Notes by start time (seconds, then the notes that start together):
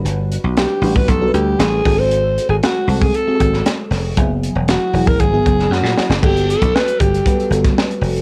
Already playing: G3 D4 F#4 B4
0.05 G1, closed hi-hat
0.32 closed hi-hat
0.44 B1
0.57 G4, snare, closed hi-hat
0.82 A1 G3 D4 F#4 B4, open hi-hat
0.96 B4, kick
1.08 B1 A4, kick, closed hi-hat
1.21 G3 D4 F#4 A4
1.28 B4
1.34 D2 G4, closed hi-hat
1.59 A1 G#4, snare, closed hi-hat
1.85 G#1 G#3 C4 F#4 A4, kick, open hi-hat
1.99 C5
2.11 closed hi-hat
2.38 closed hi-hat
2.49 G#1 G#4
2.63 F#4, snare, closed hi-hat
2.87 C2 G#3 C4 F#4 A4, open hi-hat
3.01 G#4, kick
3.14 A4, closed hi-hat
3.27 G#3 C4 F#4 G#4
3.34 A4
3.40 G#1, kick, closed hi-hat
3.53 snare
3.66 snare, closed hi-hat
3.91 F1, snare, open hi-hat
4.17 F#1 F#3 B3 E4 G#4, kick, closed hi-hat
4.43 closed hi-hat
4.55 E1
4.68 F#4, snare, closed hi-hat
4.93 E1 F#3 B3 E4 G#4, open hi-hat
5.07 A#4, kick
5.20 G#1 G#4, kick, closed hi-hat
5.32 F#3 B3 E4 G#4
5.46 F#1, kick, closed hi-hat
5.59 snare
5.70 F#2 F#4, snare
5.83 A#2, snare
5.98 snare
6.09 F#1, snare
6.22 G1 G3 A#3 F#4 G4 A4, kick, crash
6.28 B3
6.37 closed hi-hat
6.50 A4, closed hi-hat
6.62 B1, kick, closed hi-hat
6.75 B4, snare
6.88 closed hi-hat
7.00 G1 G4, kick, closed hi-hat
7.14 closed hi-hat
7.25 G3 B3 F#4 B4, kick, closed hi-hat
7.40 closed hi-hat
7.50 G1 G3 B3 F#4 A4, closed hi-hat
7.65 kick, snare, closed hi-hat
7.78 snare
7.91 closed hi-hat
8.01 F1, open hi-hat
8.16 closed hi-hat